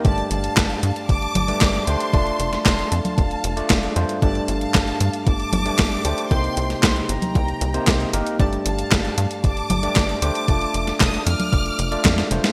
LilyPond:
<<
  \new Staff \with { instrumentName = "Violin section" } { \time 4/4 \key g \minor \tempo 4 = 115 <d'' a''>8 <f'' a''>4. <a'' d'''>4. <a'' c'''>8~ | <a'' c'''>4 <a'' c'''>8 <f'' a''>2 r8 | <d'' a''>8 <f'' a''>4. <a'' d'''>2 | <g'' c'''>4 <g'' c'''>8 <g'' bes''>2 r8 |
<d'' a''>8 <f'' a''>4. <a'' d'''>4. <a'' d'''>8~ | <a'' d'''>4 <a'' ees'''>8 <d''' f'''>2 r8 | }
  \new Staff \with { instrumentName = "Tine electric piano" } { \time 4/4 \key g \minor <g, a d' g' d''>2~ <g, a d' g' d''>8. <g, a d' g' d''>8. <a d' g' c''>8 | <a d' f' d''>2~ <a d' f' d''>8. <a d' f' d''>8. <g, a d' f' c''>8 | <g, a d' g' d''>2~ <g, a d' g' d''>8. <g, a d' g' d''>8. <a d' g' c''>8 | <c bes ees' g' c''>2~ <c bes ees' g' c''>8. <c bes ees' g' c''>8. <bes ees' g' bes'>8 |
<g, a d' g' d''>2~ <g, a d' g' d''>8. <g, a d' g' d''>8. <a d' g' c''>8 | <a d' f' d''>2~ <a d' f' d''>8. <a d' f' d''>8. <g, a d' f' c''>8 | }
  \new Staff \with { instrumentName = "Analog synth bass" } { \clef bass \time 4/4 \key g \minor g,,8 g,,8 g,,8 g,8 g,,8 g,,8 g,,8 d,8 | f,,8 f,,8 f,,8 f,8 f,,8 f,,8 f,,8 f,8 | g,,8 g,,8 g,,8 g,8 g,,8 g,,8 g,,8 d,8 | c,8 c,8 c,8 g,,8 c,8 c,8 c,8 g,,8 |
g,,8 g,,8 g,,8 g,8 g,,8 g,,8 g,,8 d,8 | f,,8 f,,8 f,,8 f,8 f,,8 f,,8 f,8 f,,8 | }
  \new DrumStaff \with { instrumentName = "Drums" } \drummode { \time 4/4 <hh bd>16 hh16 hh16 hh16 <hc hh bd sn>16 hh16 hh16 hh16 <hh bd>16 hh16 <cgho hh>16 hh16 <hc hh bd sn>16 hh16 hh16 hh16 | <hh bd>16 hh16 hh16 <hh sn>16 <hc hh bd sn>16 hh16 hh16 <cgho hh>16 <hh bd>16 hh16 hh16 hh16 <hc hh bd sn>16 hh16 hh16 hh16 | <hh bd>16 hh16 hh16 hh16 <hc hh bd sn>16 hh16 hh16 hh16 <hh bd>16 hh16 <cgho hh>16 hh16 <hc hh bd sn>16 hh16 hh16 hh16 | <hh bd>16 hh16 hh16 <hh sn>16 <hc hh bd sn>16 hh16 hh16 <cgho hh>16 <hh bd>16 hh16 hh16 hh16 <hc hh bd sn>16 hh16 hh16 hh16 |
<hh bd>16 hh16 hh16 hh16 <hc hh bd sn>16 hh16 hh16 hh16 <hh bd>16 hh16 <cgho hh>16 hh16 <hc hh bd sn>16 hh16 hh16 hh16 | <hh bd>16 hh16 hh16 <hh sn>16 <hc hh bd sn>16 hh16 hh16 <cgho hh>16 <hh bd>16 hh16 hh16 hh16 <hc cgho hh bd sn>16 <hh sn>16 hh16 <hh sn>16 | }
>>